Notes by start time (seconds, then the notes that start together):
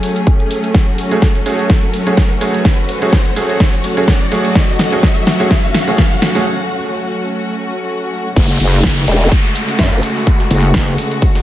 Already playing: F#3 A3 C#4 G#4, riser
0.03 open hi-hat
0.16 closed hi-hat
0.27 kick, closed hi-hat
0.40 closed hi-hat
0.51 open hi-hat
0.64 closed hi-hat
0.74 F#4, kick, snare, closed hi-hat
0.98 open hi-hat
1.11 A3 C#4 F#4 G#4, closed hi-hat
1.22 kick, snare, closed hi-hat
1.35 closed hi-hat
1.46 A3 C#4 F#4 G#4, open hi-hat
1.59 closed hi-hat
1.70 kick, snare, closed hi-hat
1.83 closed hi-hat
1.94 open hi-hat
2.07 A3 C#4 F#4 G#4, closed hi-hat
2.17 kick, snare, closed hi-hat
2.31 closed hi-hat
2.41 A3 C#4 F#4 G#4, open hi-hat
2.54 closed hi-hat
2.65 kick, snare, closed hi-hat
2.89 open hi-hat
3.02 A3 C#4 F#4 G#4, closed hi-hat
3.13 kick, snare, closed hi-hat
3.26 closed hi-hat
3.36 A3 C#4 F#4 G#4, open hi-hat
3.50 closed hi-hat
3.60 kick, snare, closed hi-hat
3.73 open hi-hat
3.84 open hi-hat
3.97 A3 C#4 F#4 G#4, closed hi-hat
4.08 kick, snare, closed hi-hat
4.21 closed hi-hat
4.32 A3 C#4 F#4 G#4, open hi-hat
4.45 closed hi-hat
4.55 kick, snare, closed hi-hat
4.79 snare, open hi-hat
4.92 A3 C#4 F#4 G#4, closed hi-hat
5.03 kick, snare, closed hi-hat
5.16 closed hi-hat
5.27 snare, open hi-hat
5.40 A3 C#4 F#4 G#4, closed hi-hat
5.51 kick, snare, closed hi-hat
5.64 closed hi-hat
5.75 snare, open hi-hat
5.88 A3 C#4 F#4 G#4, closed hi-hat
5.98 kick, snare, closed hi-hat
6.11 closed hi-hat
6.22 snare, open hi-hat
6.35 A3 C#4 F#4 G#4, closed hi-hat
8.36 F#1 C#3 G#3 A3 F#4, kick, closed hi-hat, crash, ride, tambourine, downlifter
8.50 closed hi-hat
8.60 F#1, open hi-hat, ride, tambourine
8.73 tambourine
8.84 kick, snare, closed hi-hat, ride, tambourine
8.97 ride
9.08 E1, open hi-hat, ride, tambourine
9.21 closed hi-hat, tambourine
9.32 kick, closed hi-hat, ride, tambourine
9.55 open hi-hat, ride, tambourine
9.69 closed hi-hat, ride, tambourine
9.79 F#2, kick, snare, closed hi-hat, ride, tambourine
9.92 F#1, ride, tambourine
10.03 open hi-hat, ride, tambourine
10.16 snare, closed hi-hat, tambourine
10.27 kick, closed hi-hat, ride, tambourine
10.40 snare, closed hi-hat
10.51 F#1, open hi-hat, ride, tambourine
10.64 tambourine
10.74 kick, snare, closed hi-hat, ride, tambourine
10.98 open hi-hat, ride, tambourine
11.11 closed hi-hat, ride, tambourine
11.22 kick, closed hi-hat, ride, tambourine
11.35 snare, open hi-hat